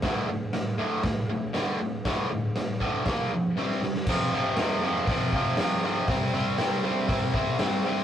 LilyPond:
<<
  \new Staff \with { instrumentName = "Overdriven electric guitar" } { \clef bass \time 4/4 \key f \major \tempo 4 = 119 <d, a, d>8 <d, a,>8 <d, a,>8 <d, a, d>8 <d, a,>8 <d, a,>8 <d, a, d>8 <d, a,>8 | <d, a, d>8 <d, a,>8 <d, a,>8 <d, a, d>8 <bes, f bes>8 <bes, f>8 <c g c'>8 <c g>8 | <f, c f>8 <f, c f>8 <f, c f>8 <f, c f>8 <f, c f>8 <f, c f>8 <f, c f>8 <f, c f>8 | <c g c'>8 <c g c'>8 <c g c'>8 <c g c'>8 <c g c'>8 <c g c'>8 <c g c'>8 <c g c'>8 | }
  \new DrumStaff \with { instrumentName = "Drums" } \drummode { \time 4/4 <hho bd sn>4 <hho sn>4 <hho bd sn>4 <hho sn>4 | <hho bd sn>4 <hho sn>8 bd8 <hho bd sn>4 sn16 sn16 sn16 sn16 | <cymc bd>4 <hho sn>4 <hho bd>8 bd8 <hho sn>4 | <hho bd>4 <hho sn>4 <hho bd>8 bd8 <hho sn>4 | }
>>